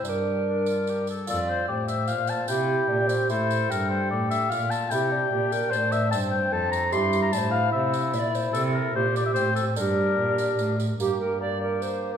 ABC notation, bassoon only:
X:1
M:3/4
L:1/8
Q:1/4=148
K:Gdor
V:1 name="Bassoon"
D4- D z | F2 G2 F2 | E2 D C E2 | G4 F2 |
E D4- D | C4 E2 | E6- | E3 z C2 |
D4- D z | B,2 B,4 |]